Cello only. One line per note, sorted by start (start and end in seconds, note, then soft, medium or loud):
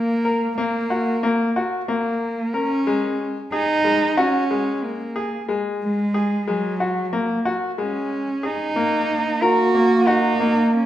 0.00 0.54 A#3 medium
0.57 1.52 A#3 medium
1.88 2.55 A#3 medium
2.53 3.19 C#4 medium
3.52 4.19 D#4 loud
4.18 4.84 C#4 medium
4.83 5.49 A#3 medium
5.83 6.50 G#3 medium
6.48 7.46 F#3 medium
7.80 8.47 C#4 medium
8.45 9.45 D#4 medium
9.43 10.09 F#4 medium
10.08 10.75 D#4 medium
10.74 10.86 C#4 medium